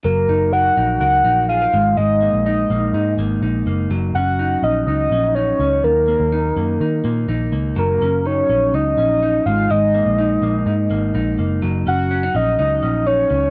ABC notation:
X:1
M:4/4
L:1/16
Q:1/4=124
K:F#
V:1 name="Soft synth lead"
A4 f4 f4 e4 | d4 d6 z6 | z2 f4 d2 d4 c4 | A12 z4 |
A4 c4 d6 e2 | d12 z4 | z2 f4 d2 d4 c4 |]
V:2 name="Clean electric guitar"
F,2 D2 A2 D2 A2 D2 G A G,2 | G,2 A,2 D2 A,2 D2 A,2 D2 A,2 | F,2 C2 D2 C2 D2 C2 D2 C2 | D,2 A,2 D2 A,2 D2 A,2 D2 A,2 |
F,2 C2 D2 C2 D2 C2 D2 G,2 | G,2 A,2 D2 A,2 D2 A,2 D2 A,2 | F,2 C2 C D C2 D2 C2 D2 C2 |]
V:3 name="Picked electric bass" clef=bass
F,,,2 F,,,4 A,,,2 C,,2 A,,,4 G,,,2 | G,,,3 A,,,3 A,,,2 G,,2 G,,,2 A,,,2 F,,,2 | F,,,2 F,,,4 A,,,2 C,,2 A,,,4 C,,2 | D,,3 D,,3 F,,2 D,2 A,,2 A,,,2 C,,2 |
F,,,2 F,,,4 A,,,2 C,,2 A,,,4 G,,,2 | G,,,3 A,,,3 A,,,2 G,,2 G,,,2 A,,,2 F,,,2 | F,,,2 F,,,4 A,,,2 C,,2 A,,,4 C,,2 |]